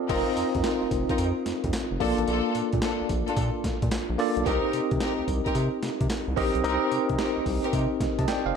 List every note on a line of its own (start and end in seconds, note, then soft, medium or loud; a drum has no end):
0.00 0.09 C4 medium
0.00 0.10 F4 medium
0.00 0.12 A4 medium
0.00 0.12 D5 loud
0.00 0.10 D#5 medium
0.00 0.12 F5 medium
0.00 0.12 A5 medium
0.09 0.23 F1 loud
0.09 0.35 C4 loud
0.09 0.97 C4 medium
0.09 0.35 D#4 medium
0.09 0.98 D#4 medium
0.09 0.35 F4 medium
0.09 0.98 F4 medium
0.09 0.35 A#4 loud
0.09 0.98 A#4 medium
0.09 0.98 D#5 medium
0.09 kick loud
0.09 closed hi-hat medium
0.09 crash loud
0.09 tambourine medium
0.37 0.44 F2 medium
0.37 closed hi-hat medium
0.37 tambourine medium
0.55 0.62 F2 loud
0.55 kick medium
0.55 closed hi-hat medium
0.64 0.82 C4 medium
0.64 0.82 D#4 medium
0.64 0.82 F4 medium
0.64 0.82 A#4 medium
0.64 snare loud
0.64 clap medium
0.64 closed hi-hat medium
0.64 tambourine loud
0.82 0.86 F1 soft
0.91 1.05 F1 loud
0.91 kick medium
0.91 closed hi-hat medium
0.91 tambourine medium
1.09 1.18 C4 medium
1.09 1.18 D#4 medium
1.09 1.19 F4 medium
1.09 1.19 A#4 medium
1.09 kick medium
1.09 closed hi-hat medium
1.18 1.32 F2 loud
1.18 closed hi-hat medium
1.18 tambourine medium
1.46 1.53 F2 soft
1.46 snare medium
1.46 closed hi-hat medium
1.46 tambourine medium
1.64 1.71 F2 loud
1.64 kick medium
1.64 closed hi-hat medium
1.73 snare loud
1.73 clap medium
1.73 closed hi-hat medium
1.73 tambourine loud
1.91 1.98 F1 loud
2.00 2.14 A#1 loud
2.00 2.89 A#3 medium
2.00 2.18 A#3 medium
2.00 2.89 D4 medium
2.00 2.18 D4 medium
2.00 2.90 F4 medium
2.00 2.18 F4 medium
2.00 2.90 A4 medium
2.00 2.18 A4 loud
2.00 2.90 D5 loud
2.00 kick medium
2.00 open hi-hat medium
2.18 2.25 A1 loud
2.18 closed hi-hat medium
2.28 2.41 A#1 loud
2.28 2.53 A#3 loud
2.28 2.54 D4 medium
2.28 2.54 F4 loud
2.28 2.54 A4 loud
2.28 closed hi-hat medium
2.28 tambourine medium
2.55 2.62 A#2 medium
2.55 closed hi-hat medium
2.55 tambourine medium
2.73 2.80 A#2 loud
2.73 kick loud
2.73 closed hi-hat soft
2.82 3.00 A#3 medium
2.82 3.00 D4 medium
2.82 3.00 F4 medium
2.82 3.00 A4 medium
2.82 snare loud
2.82 clap medium
2.82 closed hi-hat medium
2.82 tambourine loud
3.01 3.04 A#1 medium
3.09 3.23 A#1 loud
3.09 kick medium
3.09 closed hi-hat medium
3.09 tambourine medium
3.27 3.37 A#3 medium
3.27 3.37 D4 medium
3.27 3.37 F4 medium
3.27 3.37 A4 medium
3.27 closed hi-hat medium
3.37 3.51 A#2 loud
3.37 kick medium
3.37 closed hi-hat medium
3.37 tambourine medium
3.64 3.71 A#2 soft
3.64 kick loud
3.64 snare medium
3.64 closed hi-hat medium
3.64 tambourine medium
3.82 3.89 A#2 loud
3.82 kick medium
3.82 closed hi-hat medium
3.91 3.99 A#1 medium
3.91 snare loud
3.91 clap medium
3.91 closed hi-hat medium
3.91 tambourine medium
4.10 4.17 A#1 loud
4.18 4.42 A#3 medium
4.18 4.42 D4 medium
4.18 4.42 F4 medium
4.18 4.42 A4 medium
4.18 4.43 D5 loud
4.18 open hi-hat medium
4.37 4.44 B1 medium
4.37 closed hi-hat medium
4.46 4.60 C2 loud
4.46 4.72 C4 loud
4.46 5.34 C4 medium
4.46 4.72 D#4 loud
4.46 5.34 D#4 medium
4.46 4.72 G4 medium
4.46 5.34 G4 medium
4.46 4.72 A#4 loud
4.46 5.34 A#4 medium
4.46 5.35 D#5 loud
4.46 kick loud
4.46 closed hi-hat medium
4.46 tambourine medium
4.73 4.81 C3 medium
4.73 closed hi-hat medium
4.73 tambourine medium
4.91 4.99 C3 loud
4.91 kick loud
4.91 closed hi-hat medium
5.00 5.18 C4 medium
5.00 5.18 D#4 medium
5.00 5.18 G4 medium
5.00 5.18 A#4 medium
5.00 snare loud
5.00 clap medium
5.00 closed hi-hat medium
5.00 tambourine loud
5.19 5.22 C2 medium
5.28 5.41 C2 medium
5.28 kick medium
5.28 closed hi-hat medium
5.28 tambourine medium
5.46 5.55 C4 medium
5.46 5.55 D#4 medium
5.46 5.55 G4 medium
5.46 5.55 A#4 medium
5.46 kick medium
5.46 closed hi-hat medium
5.55 5.69 C3 loud
5.55 closed hi-hat medium
5.55 tambourine medium
5.83 5.90 C3 soft
5.83 snare medium
5.83 closed hi-hat medium
5.83 tambourine medium
6.01 6.08 C3 medium
6.01 kick medium
6.01 closed hi-hat medium
6.10 snare loud
6.10 clap medium
6.10 closed hi-hat medium
6.10 tambourine loud
6.28 6.35 C2 loud
6.36 6.51 A#1 medium
6.36 6.60 C4 medium
6.36 6.54 C4 medium
6.36 6.60 D#4 medium
6.36 6.55 D#4 medium
6.36 6.60 G4 medium
6.36 6.55 G4 medium
6.36 6.55 A#4 medium
6.36 6.61 A#4 medium
6.36 6.61 D#5 loud
6.36 kick medium
6.36 open hi-hat medium
6.55 6.62 B1 loud
6.55 closed hi-hat medium
6.64 6.78 C2 loud
6.64 7.52 C4 medium
6.64 6.90 C4 loud
6.64 7.52 D#4 medium
6.64 6.90 D#4 medium
6.64 7.52 G4 medium
6.64 6.90 G4 loud
6.64 7.52 A#4 medium
6.64 6.90 A#4 loud
6.64 7.52 D#5 loud
6.64 closed hi-hat medium
6.64 tambourine medium
6.92 6.99 C3 medium
6.92 closed hi-hat medium
6.92 tambourine medium
7.09 7.17 C3 loud
7.09 kick medium
7.09 closed hi-hat medium
7.18 7.36 C4 medium
7.18 7.36 D#4 medium
7.18 7.36 G4 medium
7.18 7.37 A#4 medium
7.18 snare loud
7.18 clap medium
7.18 closed hi-hat medium
7.18 tambourine medium
7.37 7.41 C2 soft
7.46 7.60 C2 loud
7.46 kick medium
7.46 open hi-hat medium
7.46 tambourine medium
7.64 7.73 C4 medium
7.64 7.73 D#4 medium
7.64 7.73 G4 medium
7.64 7.73 A#4 medium
7.64 closed hi-hat medium
7.73 7.87 C3 loud
7.73 kick medium
7.73 closed hi-hat medium
7.73 tambourine medium
8.00 8.08 C3 soft
8.00 kick loud
8.00 snare medium
8.00 closed hi-hat medium
8.00 tambourine medium
8.19 8.26 C3 loud
8.19 8.28 D#5 medium
8.19 8.27 A5 medium
8.19 kick medium
8.19 closed hi-hat medium
8.28 8.45 D5 medium
8.28 8.45 G5 medium
8.28 snare loud
8.28 clap medium
8.28 closed hi-hat medium
8.28 tambourine medium
8.46 8.53 F1 loud
8.46 8.55 C5 medium
8.46 8.55 F5 medium